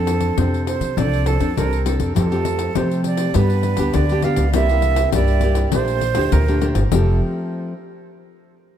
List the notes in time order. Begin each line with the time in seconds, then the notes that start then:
Already playing: F2 F3 C4 D4 A4
0.07 pandeiro
0.20 pandeiro
0.38 F2 C3 C4 D4 A4 C5, pandeiro
0.54 pandeiro
0.66 C5, pandeiro
0.80 F3, pandeiro
0.97 C2 F3 C4 D4 A4 D5, pandeiro
1.13 pandeiro
1.26 A4, pandeiro
1.40 F2 C4 D4 A4, pandeiro
1.57 C2 C3 C4 D4 A4 A#4, pandeiro
1.73 pandeiro
1.86 C4 D4 A4, pandeiro
2.00 F2, pandeiro
2.15 F2 F3 A3 C4 G4 A4, pandeiro
2.31 A3 C4 G4, pandeiro
2.45 pandeiro
2.59 pandeiro
2.75 C3 F3 A3 C4 G4 C5, pandeiro
2.91 pandeiro
3.04 D5, pandeiro
3.17 pandeiro
3.34 G2 G3 B3 D4 G4 B4, pandeiro
3.50 pandeiro
3.63 pandeiro
3.77 D2 B3 D4 G4, pandeiro
3.93 D2 D3 D5, pandeiro
4.09 B3 D4 G4, pandeiro
4.22 B3 D4 G4 F5, pandeiro
4.36 C#2, pandeiro
4.53 C2 C3 A#3 E4 G4 E5, pandeiro
4.69 A#3 E4 G4, pandeiro
4.82 pandeiro
4.96 pandeiro
5.12 C2 G2 A#3 E4 G4 D5, pandeiro
5.28 pandeiro
5.41 A#3 E4 G4, pandeiro
5.55 pandeiro
5.72 A#1 A#2 A3 D4 G4 C5, pandeiro
5.88 pandeiro
6.01 pandeiro
6.15 D2 A3 D4 G4, pandeiro
6.32 D2 A#2 A#4, pandeiro
6.48 A3 D4 G4, pandeiro
6.61 A3 D4 G4, pandeiro
6.75 G1, pandeiro
6.92 F1 F3 A3 C4 G4 A4, pandeiro